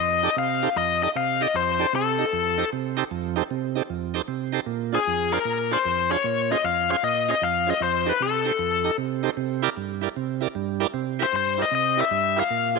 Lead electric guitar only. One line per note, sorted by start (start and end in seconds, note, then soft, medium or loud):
0.00 0.34 D#5 loud
0.38 0.77 F5 medium
0.77 1.02 D#5 loud
1.03 1.08 D#5 loud
1.17 1.42 F5 loud
1.42 1.55 D#5 medium
1.56 1.92 C5 medium
1.96 2.69 A4 medium
4.95 5.33 G#4 medium
5.33 5.70 A#4 medium
5.73 6.11 C5 medium
6.12 6.48 C#5 loud
6.52 6.64 D#5 loud
6.64 6.88 F5 medium
6.91 7.03 F5 medium
7.04 7.30 D#5 loud
7.31 7.43 D#5 loud
7.43 7.67 F5 loud
7.70 7.82 D#5 medium
7.83 8.09 C5 medium
8.09 8.21 B4 medium
8.22 8.95 A4 medium
11.23 11.35 C5 medium
11.36 11.61 C5 medium
11.62 11.74 D#5 medium
11.75 12.00 D#5 loud
12.01 12.39 E5 loud
12.40 12.75 F5 loud